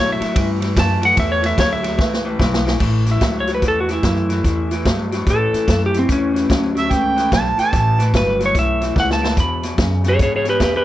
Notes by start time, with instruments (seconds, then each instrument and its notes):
Already playing: clean electric guitar A2 F#3, upright bass B2
0.00 electric slide guitar C#5
0.12 electric slide guitar E5
0.20 clean electric guitar A2 F#3, muted upright bass stroke, snare, ride
0.34 upright bass G2, clean electric guitar A2 E3, kick, snare, ride
0.60 clean electric guitar A2 E3, snare, ride
0.76 upright bass F#2, clean electric guitar A2 E3, electric slide guitar A5, kick, snare, ride
1.01 clean electric guitar A2 E3, electric slide guitar F#5, snare, ride
1.16 upright bass E2, clean electric guitar A2 E3, electric slide guitar E5, kick, snare, ride
1.32 electric slide guitar C#5
1.42 clean electric guitar A2 E3, snare, ride
1.46 electric slide guitar E5
1.57 upright bass D2, clean electric guitar A2 F#3, electric slide guitar C#5, kick, snare, ride
1.73 electric slide guitar E5
1.83 clean electric guitar A2 F#3, snare, ride
1.98 upright bass C#2, clean electric guitar A2 E3, kick, snare
2.14 snare
2.25 clean electric guitar A2 E3
2.39 upright bass B1, clean electric guitar A2 E3, kick, snare
2.54 snare
2.65 clean electric guitar A2 E3, snare
2.80 upright bass A1, clean electric guitar A2 E3, kick, snare, crash
3.06 clean electric guitar A2 E3, snare, closed hi-hat
3.12 electric slide guitar E5
3.21 upright bass C#2, clean electric guitar A2 F#3, kick, snare, closed hi-hat
3.40 electric slide guitar C#5
3.47 clean electric guitar A2 F#3, snare, closed hi-hat
3.55 electric slide guitar B4
3.62 upright bass E2, clean electric guitar A2 E3, kick, snare, closed hi-hat
3.68 electric slide guitar A4
3.80 electric slide guitar F#4
3.89 clean electric guitar A2 E3, snare, closed hi-hat
3.93 electric slide guitar E4
4.03 upright bass F#2, clean electric guitar A2 E3, kick, snare, closed hi-hat
4.29 clean electric guitar A2 E3, snare, closed hi-hat
4.44 upright bass E2, clean electric guitar A2 E3, kick, snare, closed hi-hat
4.71 clean electric guitar A2 E3, snare, closed hi-hat
4.85 upright bass G2, clean electric guitar A2 F#3, kick, snare, closed hi-hat
5.12 clean electric guitar A2 F#3, snare, closed hi-hat
5.27 upright bass A2, clean electric guitar A2 E3, electric slide guitar A4, kick, snare, closed hi-hat
5.53 clean electric guitar A2 E3, muted upright bass stroke, snare, closed hi-hat
5.67 upright bass F#2, clean electric guitar A2 E3, kick, snare, closed hi-hat
5.86 electric slide guitar G4
5.93 clean electric guitar A2 E3, snare, closed hi-hat
5.99 electric slide guitar C4
6.09 upright bass E2, clean electric guitar A2 E3, electric slide guitar C#4, kick, snare, closed hi-hat
6.34 clean electric guitar A2 E3, snare, closed hi-hat
6.49 upright bass D2, clean electric guitar A2 F#3, kick, snare, closed hi-hat
6.75 clean electric guitar A2 F#3, snare, closed hi-hat
6.79 harmonica E5
6.89 upright bass C#2, clean electric guitar A2 E3, harmonica G5, kick, snare, closed hi-hat
7.16 clean electric guitar A2 E3, snare, closed hi-hat
7.32 upright bass B1, clean electric guitar A2 E3, harmonica A5, kick, snare, closed hi-hat
7.58 clean electric guitar A2 E3, harmonica A5, muted upright bass stroke, snare, closed hi-hat
7.73 upright bass A1, clean electric guitar A2 E3, kick, snare, closed hi-hat
7.99 clean electric guitar A2 E3, snare, closed hi-hat
8.14 upright bass G1, clean electric guitar A2 F#3, electric slide guitar B4, kick, snare, closed hi-hat
8.40 clean electric guitar A2 F#3, snare, closed hi-hat
8.46 electric slide guitar C#5
8.55 upright bass B1, clean electric guitar A2 E3, electric slide guitar E5, kick, snare, closed hi-hat
8.81 clean electric guitar A2 E3, snare, closed hi-hat
8.95 upright bass C#2, clean electric guitar A2 E3, kick, snare
9.00 electric slide guitar F#5
9.11 electric slide guitar A5, snare
9.21 clean electric guitar A2 E3, snare
9.37 clean electric guitar E2 B2, upright bass E2, electric slide guitar B5, kick, snare, closed hi-hat
9.63 clean electric guitar E2 B2, snare, closed hi-hat
9.78 clean electric guitar E2 C#3, upright bass F#2, kick, snare, closed hi-hat
10.04 clean electric guitar E2 C#3, snare, closed hi-hat
10.08 electric slide guitar G#4 C#5
10.19 clean electric guitar E2 B2, upright bass G#2, electric slide guitar G#4 C#5, kick, snare, closed hi-hat
10.36 electric slide guitar G#4 C#5
10.44 clean electric guitar E2 B2, snare, closed hi-hat
10.49 electric slide guitar G4 B4
10.60 clean electric guitar E2 B2, upright bass E2, electric slide guitar G4, kick, snare, closed hi-hat
10.64 electric slide guitar B4
10.76 electric slide guitar G4 B4